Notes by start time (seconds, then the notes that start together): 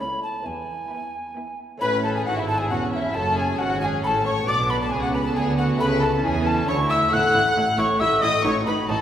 Already playing: A3
0.00 C#2 C#4 E4 A5 B5
0.23 A5
0.42 E2 B3 E4 G#5
0.46 E2
0.91 B3 E4 B5
1.36 B3 E4 B5
1.77 A2 A3 C#4 E4 B4 B5
1.81 A1 A2 C#4
2.03 A4 A5
2.14 G#4 G#5
2.25 G#1 G#2 E4 F#4 F#5
2.37 E4 E5
2.47 A4 A5
2.58 G#4 G#5
2.69 E1 E2 C#4 F#4 F#5
2.91 E4 E5 F#5
2.96 E5
3.10 A3 C#4 F#4 A5
3.14 F#1 F#2 C#4 A4 A5
3.36 G#4 G#5
3.58 G#1 G#2 F#4 F#5
3.80 G#4 G#5
4.03 A1 A2 A4 A5 B5
4.07 A5
4.25 C#5 C#6
4.44 B1 B3 D4 F#4 D5 D6
4.48 B2 D4 D6
4.69 B4 B5
4.80 A4 A5
4.91 C#2 C#3 B3 G#4 G#5
5.02 F#4 F#5
5.13 B4 B5
5.24 A4 A5
5.35 D2 D3 G#4 G#5
5.58 F#4 F#5
5.76 C#2 C#3 A3 E4 A4 B4 B5
5.80 C#3 B5
6.01 A4 A5
6.23 E2 E3 C#4 G#4 G#5
6.46 A4 A5
6.68 D2 D3 E4 C#5 C#6
6.89 E5 E6
7.08 A1 A3 E4 A4
7.12 A2 F#5 F#6
7.34 A1 A2 E4
7.56 A1 A2 E4
7.78 A1 A2 E4 C#5 C#6
8.00 A1 A2 E4 E5 E6
8.22 A1 A2 E4 D#5 D#6
8.41 A1 A2 B3 D#4 F#4 C#5 C#6
8.45 A2
8.66 A1 A2 D#4 B4 B5
8.88 A1 A2 D#4 A4 A5